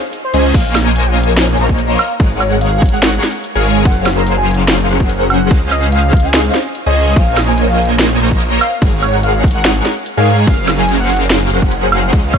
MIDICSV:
0, 0, Header, 1, 5, 480
1, 0, Start_track
1, 0, Tempo, 413793
1, 630, Time_signature, 4, 2, 24, 8
1, 14362, End_track
2, 0, Start_track
2, 0, Title_t, "Soft synth lead"
2, 0, Program_c, 0, 80
2, 283, Note_on_c, 0, 72, 98
2, 507, Note_off_c, 0, 72, 0
2, 630, Note_on_c, 0, 77, 107
2, 858, Note_off_c, 0, 77, 0
2, 1004, Note_on_c, 0, 80, 95
2, 1241, Note_on_c, 0, 77, 100
2, 1258, Note_off_c, 0, 80, 0
2, 1466, Note_off_c, 0, 77, 0
2, 2313, Note_on_c, 0, 77, 95
2, 2471, Note_off_c, 0, 77, 0
2, 2790, Note_on_c, 0, 73, 99
2, 2950, Note_off_c, 0, 73, 0
2, 3029, Note_on_c, 0, 77, 98
2, 3257, Note_off_c, 0, 77, 0
2, 3401, Note_on_c, 0, 78, 99
2, 3543, Note_off_c, 0, 78, 0
2, 4122, Note_on_c, 0, 77, 98
2, 4347, Note_off_c, 0, 77, 0
2, 4470, Note_on_c, 0, 78, 108
2, 4698, Note_off_c, 0, 78, 0
2, 4842, Note_on_c, 0, 82, 92
2, 4984, Note_off_c, 0, 82, 0
2, 5081, Note_on_c, 0, 80, 97
2, 5307, Note_off_c, 0, 80, 0
2, 6150, Note_on_c, 0, 78, 89
2, 6310, Note_off_c, 0, 78, 0
2, 6631, Note_on_c, 0, 75, 96
2, 6790, Note_off_c, 0, 75, 0
2, 6872, Note_on_c, 0, 77, 100
2, 7244, Note_on_c, 0, 80, 93
2, 7261, Note_off_c, 0, 77, 0
2, 7385, Note_off_c, 0, 80, 0
2, 7965, Note_on_c, 0, 75, 100
2, 8310, Note_on_c, 0, 77, 109
2, 8327, Note_off_c, 0, 75, 0
2, 8537, Note_off_c, 0, 77, 0
2, 8682, Note_on_c, 0, 80, 92
2, 8824, Note_off_c, 0, 80, 0
2, 8922, Note_on_c, 0, 77, 99
2, 9147, Note_off_c, 0, 77, 0
2, 9990, Note_on_c, 0, 77, 92
2, 10150, Note_off_c, 0, 77, 0
2, 10471, Note_on_c, 0, 73, 93
2, 10630, Note_off_c, 0, 73, 0
2, 10709, Note_on_c, 0, 77, 96
2, 10937, Note_off_c, 0, 77, 0
2, 11081, Note_on_c, 0, 78, 96
2, 11224, Note_off_c, 0, 78, 0
2, 11801, Note_on_c, 0, 77, 100
2, 12027, Note_off_c, 0, 77, 0
2, 12149, Note_on_c, 0, 77, 110
2, 12377, Note_off_c, 0, 77, 0
2, 12520, Note_on_c, 0, 80, 92
2, 12663, Note_off_c, 0, 80, 0
2, 12762, Note_on_c, 0, 78, 99
2, 12987, Note_off_c, 0, 78, 0
2, 13831, Note_on_c, 0, 77, 90
2, 13990, Note_off_c, 0, 77, 0
2, 14310, Note_on_c, 0, 73, 94
2, 14362, Note_off_c, 0, 73, 0
2, 14362, End_track
3, 0, Start_track
3, 0, Title_t, "Analog polysynth"
3, 0, Program_c, 1, 90
3, 390, Note_on_c, 1, 61, 84
3, 390, Note_on_c, 1, 75, 77
3, 390, Note_on_c, 1, 80, 92
3, 391, Note_on_c, 1, 68, 82
3, 391, Note_on_c, 1, 72, 83
3, 604, Note_off_c, 1, 61, 0
3, 604, Note_off_c, 1, 68, 0
3, 604, Note_off_c, 1, 75, 0
3, 604, Note_off_c, 1, 80, 0
3, 605, Note_off_c, 1, 72, 0
3, 630, Note_on_c, 1, 70, 78
3, 631, Note_on_c, 1, 58, 88
3, 631, Note_on_c, 1, 72, 75
3, 631, Note_on_c, 1, 80, 97
3, 1804, Note_off_c, 1, 58, 0
3, 1804, Note_off_c, 1, 70, 0
3, 1804, Note_off_c, 1, 72, 0
3, 1805, Note_off_c, 1, 80, 0
3, 1830, Note_on_c, 1, 58, 95
3, 1830, Note_on_c, 1, 70, 90
3, 1830, Note_on_c, 1, 72, 86
3, 1830, Note_on_c, 1, 73, 88
3, 1830, Note_on_c, 1, 75, 85
3, 1830, Note_on_c, 1, 82, 105
3, 2297, Note_off_c, 1, 58, 0
3, 2297, Note_off_c, 1, 70, 0
3, 2297, Note_off_c, 1, 72, 0
3, 2297, Note_off_c, 1, 73, 0
3, 2297, Note_off_c, 1, 75, 0
3, 2297, Note_off_c, 1, 82, 0
3, 2550, Note_on_c, 1, 56, 93
3, 2550, Note_on_c, 1, 68, 83
3, 2550, Note_on_c, 1, 70, 81
3, 2550, Note_on_c, 1, 73, 86
3, 2550, Note_on_c, 1, 78, 100
3, 3724, Note_off_c, 1, 56, 0
3, 3724, Note_off_c, 1, 68, 0
3, 3724, Note_off_c, 1, 70, 0
3, 3724, Note_off_c, 1, 73, 0
3, 3724, Note_off_c, 1, 78, 0
3, 4122, Note_on_c, 1, 56, 91
3, 4122, Note_on_c, 1, 68, 84
3, 4122, Note_on_c, 1, 70, 87
3, 4122, Note_on_c, 1, 73, 81
3, 4122, Note_on_c, 1, 80, 99
3, 4444, Note_off_c, 1, 56, 0
3, 4444, Note_off_c, 1, 68, 0
3, 4444, Note_off_c, 1, 70, 0
3, 4444, Note_off_c, 1, 73, 0
3, 4444, Note_off_c, 1, 80, 0
3, 4469, Note_on_c, 1, 61, 78
3, 4470, Note_on_c, 1, 54, 85
3, 4470, Note_on_c, 1, 68, 75
3, 4470, Note_on_c, 1, 70, 81
3, 4470, Note_on_c, 1, 72, 82
3, 4470, Note_on_c, 1, 77, 92
3, 5644, Note_off_c, 1, 54, 0
3, 5644, Note_off_c, 1, 61, 0
3, 5644, Note_off_c, 1, 68, 0
3, 5644, Note_off_c, 1, 70, 0
3, 5644, Note_off_c, 1, 72, 0
3, 5644, Note_off_c, 1, 77, 0
3, 5669, Note_on_c, 1, 54, 94
3, 5669, Note_on_c, 1, 61, 90
3, 5669, Note_on_c, 1, 68, 88
3, 5669, Note_on_c, 1, 70, 93
3, 5669, Note_on_c, 1, 72, 84
3, 5669, Note_on_c, 1, 78, 103
3, 6364, Note_off_c, 1, 54, 0
3, 6364, Note_off_c, 1, 61, 0
3, 6364, Note_off_c, 1, 68, 0
3, 6364, Note_off_c, 1, 70, 0
3, 6364, Note_off_c, 1, 72, 0
3, 6364, Note_off_c, 1, 78, 0
3, 6389, Note_on_c, 1, 68, 84
3, 6389, Note_on_c, 1, 72, 83
3, 6389, Note_on_c, 1, 75, 80
3, 6390, Note_on_c, 1, 77, 104
3, 7564, Note_off_c, 1, 68, 0
3, 7564, Note_off_c, 1, 72, 0
3, 7564, Note_off_c, 1, 75, 0
3, 7564, Note_off_c, 1, 77, 0
3, 7961, Note_on_c, 1, 61, 90
3, 7961, Note_on_c, 1, 72, 80
3, 7961, Note_on_c, 1, 75, 84
3, 7961, Note_on_c, 1, 80, 108
3, 7962, Note_on_c, 1, 68, 82
3, 8284, Note_off_c, 1, 61, 0
3, 8284, Note_off_c, 1, 68, 0
3, 8284, Note_off_c, 1, 72, 0
3, 8284, Note_off_c, 1, 75, 0
3, 8284, Note_off_c, 1, 80, 0
3, 8309, Note_on_c, 1, 58, 86
3, 8309, Note_on_c, 1, 70, 80
3, 8309, Note_on_c, 1, 72, 78
3, 8309, Note_on_c, 1, 73, 83
3, 8309, Note_on_c, 1, 75, 80
3, 9484, Note_off_c, 1, 58, 0
3, 9484, Note_off_c, 1, 70, 0
3, 9484, Note_off_c, 1, 72, 0
3, 9484, Note_off_c, 1, 73, 0
3, 9484, Note_off_c, 1, 75, 0
3, 9510, Note_on_c, 1, 58, 98
3, 9510, Note_on_c, 1, 70, 92
3, 9510, Note_on_c, 1, 72, 85
3, 9510, Note_on_c, 1, 73, 90
3, 9510, Note_on_c, 1, 75, 88
3, 9510, Note_on_c, 1, 82, 105
3, 9977, Note_off_c, 1, 58, 0
3, 9977, Note_off_c, 1, 70, 0
3, 9977, Note_off_c, 1, 72, 0
3, 9977, Note_off_c, 1, 73, 0
3, 9977, Note_off_c, 1, 75, 0
3, 9977, Note_off_c, 1, 82, 0
3, 10229, Note_on_c, 1, 56, 89
3, 10229, Note_on_c, 1, 68, 83
3, 10229, Note_on_c, 1, 70, 84
3, 10229, Note_on_c, 1, 73, 85
3, 10229, Note_on_c, 1, 78, 101
3, 11404, Note_off_c, 1, 56, 0
3, 11404, Note_off_c, 1, 68, 0
3, 11404, Note_off_c, 1, 70, 0
3, 11404, Note_off_c, 1, 73, 0
3, 11404, Note_off_c, 1, 78, 0
3, 11801, Note_on_c, 1, 56, 95
3, 11801, Note_on_c, 1, 68, 82
3, 11801, Note_on_c, 1, 70, 88
3, 11801, Note_on_c, 1, 73, 87
3, 11801, Note_on_c, 1, 80, 102
3, 12124, Note_off_c, 1, 56, 0
3, 12124, Note_off_c, 1, 68, 0
3, 12124, Note_off_c, 1, 70, 0
3, 12124, Note_off_c, 1, 73, 0
3, 12124, Note_off_c, 1, 80, 0
3, 12149, Note_on_c, 1, 54, 84
3, 12149, Note_on_c, 1, 61, 79
3, 12149, Note_on_c, 1, 68, 75
3, 12149, Note_on_c, 1, 70, 81
3, 12149, Note_on_c, 1, 72, 77
3, 12149, Note_on_c, 1, 77, 98
3, 13324, Note_off_c, 1, 54, 0
3, 13324, Note_off_c, 1, 61, 0
3, 13324, Note_off_c, 1, 68, 0
3, 13324, Note_off_c, 1, 70, 0
3, 13324, Note_off_c, 1, 72, 0
3, 13324, Note_off_c, 1, 77, 0
3, 13349, Note_on_c, 1, 54, 97
3, 13349, Note_on_c, 1, 61, 88
3, 13349, Note_on_c, 1, 68, 93
3, 13349, Note_on_c, 1, 70, 91
3, 13349, Note_on_c, 1, 72, 94
3, 13349, Note_on_c, 1, 78, 104
3, 14044, Note_off_c, 1, 54, 0
3, 14044, Note_off_c, 1, 61, 0
3, 14044, Note_off_c, 1, 68, 0
3, 14044, Note_off_c, 1, 70, 0
3, 14044, Note_off_c, 1, 72, 0
3, 14044, Note_off_c, 1, 78, 0
3, 14069, Note_on_c, 1, 68, 83
3, 14070, Note_on_c, 1, 61, 93
3, 14070, Note_on_c, 1, 75, 83
3, 14362, Note_off_c, 1, 61, 0
3, 14362, Note_off_c, 1, 68, 0
3, 14362, Note_off_c, 1, 75, 0
3, 14362, End_track
4, 0, Start_track
4, 0, Title_t, "Detuned saw bass"
4, 0, Program_c, 2, 39
4, 390, Note_on_c, 2, 37, 93
4, 609, Note_off_c, 2, 37, 0
4, 631, Note_on_c, 2, 34, 100
4, 1809, Note_off_c, 2, 34, 0
4, 1831, Note_on_c, 2, 34, 91
4, 2276, Note_off_c, 2, 34, 0
4, 2551, Note_on_c, 2, 32, 101
4, 3703, Note_off_c, 2, 32, 0
4, 4123, Note_on_c, 2, 32, 100
4, 4471, Note_on_c, 2, 30, 103
4, 4488, Note_off_c, 2, 32, 0
4, 5649, Note_off_c, 2, 30, 0
4, 5670, Note_on_c, 2, 30, 99
4, 6391, Note_on_c, 2, 37, 94
4, 6408, Note_off_c, 2, 30, 0
4, 7543, Note_off_c, 2, 37, 0
4, 7962, Note_on_c, 2, 37, 96
4, 8289, Note_off_c, 2, 37, 0
4, 8310, Note_on_c, 2, 34, 102
4, 9489, Note_off_c, 2, 34, 0
4, 9510, Note_on_c, 2, 34, 98
4, 9955, Note_off_c, 2, 34, 0
4, 10230, Note_on_c, 2, 32, 100
4, 11383, Note_off_c, 2, 32, 0
4, 11802, Note_on_c, 2, 44, 96
4, 12150, Note_on_c, 2, 30, 101
4, 12167, Note_off_c, 2, 44, 0
4, 13328, Note_off_c, 2, 30, 0
4, 13351, Note_on_c, 2, 30, 101
4, 14049, Note_off_c, 2, 30, 0
4, 14070, Note_on_c, 2, 37, 97
4, 14362, Note_off_c, 2, 37, 0
4, 14362, End_track
5, 0, Start_track
5, 0, Title_t, "Drums"
5, 150, Note_on_c, 9, 42, 85
5, 266, Note_off_c, 9, 42, 0
5, 391, Note_on_c, 9, 42, 70
5, 507, Note_off_c, 9, 42, 0
5, 630, Note_on_c, 9, 36, 120
5, 631, Note_on_c, 9, 42, 82
5, 631, Note_on_c, 9, 49, 76
5, 631, Note_on_c, 9, 57, 44
5, 746, Note_off_c, 9, 36, 0
5, 747, Note_off_c, 9, 42, 0
5, 747, Note_off_c, 9, 49, 0
5, 747, Note_off_c, 9, 57, 0
5, 870, Note_on_c, 9, 38, 62
5, 870, Note_on_c, 9, 42, 66
5, 870, Note_on_c, 9, 76, 60
5, 986, Note_off_c, 9, 38, 0
5, 986, Note_off_c, 9, 42, 0
5, 986, Note_off_c, 9, 76, 0
5, 1111, Note_on_c, 9, 42, 93
5, 1227, Note_off_c, 9, 42, 0
5, 1351, Note_on_c, 9, 42, 54
5, 1395, Note_off_c, 9, 42, 0
5, 1395, Note_on_c, 9, 42, 71
5, 1431, Note_off_c, 9, 42, 0
5, 1431, Note_on_c, 9, 42, 89
5, 1547, Note_off_c, 9, 42, 0
5, 1592, Note_on_c, 9, 38, 118
5, 1592, Note_on_c, 9, 42, 84
5, 1592, Note_on_c, 9, 57, 38
5, 1708, Note_off_c, 9, 38, 0
5, 1708, Note_off_c, 9, 42, 0
5, 1708, Note_off_c, 9, 57, 0
5, 1831, Note_on_c, 9, 42, 76
5, 1947, Note_off_c, 9, 42, 0
5, 1963, Note_on_c, 9, 36, 65
5, 2071, Note_on_c, 9, 42, 82
5, 2079, Note_off_c, 9, 36, 0
5, 2187, Note_off_c, 9, 42, 0
5, 2310, Note_on_c, 9, 42, 69
5, 2310, Note_on_c, 9, 76, 78
5, 2426, Note_off_c, 9, 42, 0
5, 2426, Note_off_c, 9, 76, 0
5, 2550, Note_on_c, 9, 36, 127
5, 2550, Note_on_c, 9, 42, 81
5, 2550, Note_on_c, 9, 57, 46
5, 2666, Note_off_c, 9, 36, 0
5, 2666, Note_off_c, 9, 42, 0
5, 2666, Note_off_c, 9, 57, 0
5, 2790, Note_on_c, 9, 42, 67
5, 2790, Note_on_c, 9, 76, 59
5, 2906, Note_off_c, 9, 42, 0
5, 2906, Note_off_c, 9, 76, 0
5, 3030, Note_on_c, 9, 42, 90
5, 3146, Note_off_c, 9, 42, 0
5, 3270, Note_on_c, 9, 42, 53
5, 3271, Note_on_c, 9, 36, 115
5, 3314, Note_off_c, 9, 42, 0
5, 3314, Note_on_c, 9, 42, 72
5, 3350, Note_off_c, 9, 42, 0
5, 3350, Note_on_c, 9, 42, 84
5, 3387, Note_off_c, 9, 36, 0
5, 3466, Note_off_c, 9, 42, 0
5, 3510, Note_on_c, 9, 38, 124
5, 3510, Note_on_c, 9, 42, 86
5, 3510, Note_on_c, 9, 57, 40
5, 3626, Note_off_c, 9, 38, 0
5, 3626, Note_off_c, 9, 42, 0
5, 3626, Note_off_c, 9, 57, 0
5, 3750, Note_on_c, 9, 38, 66
5, 3750, Note_on_c, 9, 42, 74
5, 3866, Note_off_c, 9, 38, 0
5, 3866, Note_off_c, 9, 42, 0
5, 3990, Note_on_c, 9, 42, 79
5, 4106, Note_off_c, 9, 42, 0
5, 4230, Note_on_c, 9, 42, 69
5, 4346, Note_off_c, 9, 42, 0
5, 4470, Note_on_c, 9, 36, 127
5, 4470, Note_on_c, 9, 42, 74
5, 4470, Note_on_c, 9, 57, 47
5, 4586, Note_off_c, 9, 36, 0
5, 4586, Note_off_c, 9, 42, 0
5, 4586, Note_off_c, 9, 57, 0
5, 4709, Note_on_c, 9, 38, 64
5, 4709, Note_on_c, 9, 42, 64
5, 4709, Note_on_c, 9, 76, 57
5, 4825, Note_off_c, 9, 38, 0
5, 4825, Note_off_c, 9, 42, 0
5, 4825, Note_off_c, 9, 76, 0
5, 4949, Note_on_c, 9, 42, 82
5, 5065, Note_off_c, 9, 42, 0
5, 5189, Note_on_c, 9, 42, 52
5, 5234, Note_off_c, 9, 42, 0
5, 5234, Note_on_c, 9, 42, 67
5, 5270, Note_off_c, 9, 42, 0
5, 5270, Note_on_c, 9, 42, 80
5, 5386, Note_off_c, 9, 42, 0
5, 5430, Note_on_c, 9, 38, 127
5, 5430, Note_on_c, 9, 42, 77
5, 5430, Note_on_c, 9, 57, 41
5, 5546, Note_off_c, 9, 38, 0
5, 5546, Note_off_c, 9, 42, 0
5, 5546, Note_off_c, 9, 57, 0
5, 5670, Note_on_c, 9, 42, 67
5, 5786, Note_off_c, 9, 42, 0
5, 5802, Note_on_c, 9, 36, 70
5, 5910, Note_on_c, 9, 42, 82
5, 5918, Note_off_c, 9, 36, 0
5, 6026, Note_off_c, 9, 42, 0
5, 6150, Note_on_c, 9, 42, 66
5, 6150, Note_on_c, 9, 76, 74
5, 6266, Note_off_c, 9, 42, 0
5, 6266, Note_off_c, 9, 76, 0
5, 6390, Note_on_c, 9, 36, 127
5, 6390, Note_on_c, 9, 42, 80
5, 6390, Note_on_c, 9, 57, 49
5, 6506, Note_off_c, 9, 36, 0
5, 6506, Note_off_c, 9, 42, 0
5, 6506, Note_off_c, 9, 57, 0
5, 6630, Note_on_c, 9, 42, 63
5, 6630, Note_on_c, 9, 76, 60
5, 6746, Note_off_c, 9, 42, 0
5, 6746, Note_off_c, 9, 76, 0
5, 6870, Note_on_c, 9, 42, 79
5, 6986, Note_off_c, 9, 42, 0
5, 7110, Note_on_c, 9, 36, 121
5, 7110, Note_on_c, 9, 42, 46
5, 7155, Note_off_c, 9, 42, 0
5, 7155, Note_on_c, 9, 42, 68
5, 7190, Note_off_c, 9, 42, 0
5, 7190, Note_on_c, 9, 42, 82
5, 7226, Note_off_c, 9, 36, 0
5, 7306, Note_off_c, 9, 42, 0
5, 7351, Note_on_c, 9, 38, 127
5, 7351, Note_on_c, 9, 42, 75
5, 7351, Note_on_c, 9, 57, 42
5, 7467, Note_off_c, 9, 38, 0
5, 7467, Note_off_c, 9, 42, 0
5, 7467, Note_off_c, 9, 57, 0
5, 7591, Note_on_c, 9, 38, 70
5, 7591, Note_on_c, 9, 42, 65
5, 7707, Note_off_c, 9, 38, 0
5, 7707, Note_off_c, 9, 42, 0
5, 7830, Note_on_c, 9, 42, 75
5, 7946, Note_off_c, 9, 42, 0
5, 8071, Note_on_c, 9, 42, 64
5, 8187, Note_off_c, 9, 42, 0
5, 8310, Note_on_c, 9, 36, 127
5, 8310, Note_on_c, 9, 42, 75
5, 8310, Note_on_c, 9, 57, 50
5, 8426, Note_off_c, 9, 36, 0
5, 8426, Note_off_c, 9, 42, 0
5, 8426, Note_off_c, 9, 57, 0
5, 8550, Note_on_c, 9, 38, 62
5, 8550, Note_on_c, 9, 42, 61
5, 8550, Note_on_c, 9, 76, 59
5, 8666, Note_off_c, 9, 38, 0
5, 8666, Note_off_c, 9, 42, 0
5, 8666, Note_off_c, 9, 76, 0
5, 8790, Note_on_c, 9, 42, 84
5, 8906, Note_off_c, 9, 42, 0
5, 9030, Note_on_c, 9, 42, 48
5, 9074, Note_off_c, 9, 42, 0
5, 9074, Note_on_c, 9, 42, 61
5, 9110, Note_off_c, 9, 42, 0
5, 9110, Note_on_c, 9, 42, 79
5, 9226, Note_off_c, 9, 42, 0
5, 9270, Note_on_c, 9, 38, 118
5, 9270, Note_on_c, 9, 42, 80
5, 9270, Note_on_c, 9, 57, 42
5, 9386, Note_off_c, 9, 38, 0
5, 9386, Note_off_c, 9, 42, 0
5, 9386, Note_off_c, 9, 57, 0
5, 9510, Note_on_c, 9, 42, 66
5, 9626, Note_off_c, 9, 42, 0
5, 9642, Note_on_c, 9, 36, 64
5, 9750, Note_on_c, 9, 42, 78
5, 9758, Note_off_c, 9, 36, 0
5, 9866, Note_off_c, 9, 42, 0
5, 9990, Note_on_c, 9, 42, 65
5, 9990, Note_on_c, 9, 76, 83
5, 10106, Note_off_c, 9, 42, 0
5, 10106, Note_off_c, 9, 76, 0
5, 10230, Note_on_c, 9, 36, 124
5, 10230, Note_on_c, 9, 42, 81
5, 10230, Note_on_c, 9, 57, 51
5, 10346, Note_off_c, 9, 36, 0
5, 10346, Note_off_c, 9, 42, 0
5, 10346, Note_off_c, 9, 57, 0
5, 10470, Note_on_c, 9, 42, 62
5, 10470, Note_on_c, 9, 76, 61
5, 10586, Note_off_c, 9, 42, 0
5, 10586, Note_off_c, 9, 76, 0
5, 10711, Note_on_c, 9, 42, 84
5, 10827, Note_off_c, 9, 42, 0
5, 10950, Note_on_c, 9, 36, 108
5, 10951, Note_on_c, 9, 42, 50
5, 10995, Note_off_c, 9, 42, 0
5, 10995, Note_on_c, 9, 42, 69
5, 11031, Note_off_c, 9, 42, 0
5, 11031, Note_on_c, 9, 42, 84
5, 11066, Note_off_c, 9, 36, 0
5, 11147, Note_off_c, 9, 42, 0
5, 11191, Note_on_c, 9, 38, 118
5, 11191, Note_on_c, 9, 42, 80
5, 11191, Note_on_c, 9, 57, 42
5, 11307, Note_off_c, 9, 38, 0
5, 11307, Note_off_c, 9, 42, 0
5, 11307, Note_off_c, 9, 57, 0
5, 11431, Note_on_c, 9, 38, 61
5, 11431, Note_on_c, 9, 42, 70
5, 11547, Note_off_c, 9, 38, 0
5, 11547, Note_off_c, 9, 42, 0
5, 11671, Note_on_c, 9, 42, 82
5, 11787, Note_off_c, 9, 42, 0
5, 11910, Note_on_c, 9, 42, 65
5, 12026, Note_off_c, 9, 42, 0
5, 12149, Note_on_c, 9, 36, 116
5, 12150, Note_on_c, 9, 42, 82
5, 12150, Note_on_c, 9, 57, 49
5, 12265, Note_off_c, 9, 36, 0
5, 12266, Note_off_c, 9, 42, 0
5, 12266, Note_off_c, 9, 57, 0
5, 12389, Note_on_c, 9, 38, 57
5, 12389, Note_on_c, 9, 42, 65
5, 12389, Note_on_c, 9, 76, 64
5, 12505, Note_off_c, 9, 38, 0
5, 12505, Note_off_c, 9, 42, 0
5, 12505, Note_off_c, 9, 76, 0
5, 12629, Note_on_c, 9, 42, 84
5, 12745, Note_off_c, 9, 42, 0
5, 12870, Note_on_c, 9, 42, 55
5, 12914, Note_off_c, 9, 42, 0
5, 12914, Note_on_c, 9, 42, 70
5, 12950, Note_off_c, 9, 42, 0
5, 12950, Note_on_c, 9, 42, 86
5, 13066, Note_off_c, 9, 42, 0
5, 13109, Note_on_c, 9, 38, 116
5, 13109, Note_on_c, 9, 42, 87
5, 13109, Note_on_c, 9, 57, 42
5, 13225, Note_off_c, 9, 38, 0
5, 13225, Note_off_c, 9, 42, 0
5, 13225, Note_off_c, 9, 57, 0
5, 13349, Note_on_c, 9, 42, 71
5, 13465, Note_off_c, 9, 42, 0
5, 13482, Note_on_c, 9, 36, 61
5, 13589, Note_on_c, 9, 42, 86
5, 13598, Note_off_c, 9, 36, 0
5, 13705, Note_off_c, 9, 42, 0
5, 13829, Note_on_c, 9, 42, 69
5, 13829, Note_on_c, 9, 76, 88
5, 13945, Note_off_c, 9, 42, 0
5, 13945, Note_off_c, 9, 76, 0
5, 14069, Note_on_c, 9, 42, 86
5, 14069, Note_on_c, 9, 57, 48
5, 14070, Note_on_c, 9, 36, 116
5, 14185, Note_off_c, 9, 42, 0
5, 14185, Note_off_c, 9, 57, 0
5, 14186, Note_off_c, 9, 36, 0
5, 14310, Note_on_c, 9, 36, 62
5, 14310, Note_on_c, 9, 42, 67
5, 14310, Note_on_c, 9, 76, 62
5, 14362, Note_off_c, 9, 36, 0
5, 14362, Note_off_c, 9, 42, 0
5, 14362, Note_off_c, 9, 76, 0
5, 14362, End_track
0, 0, End_of_file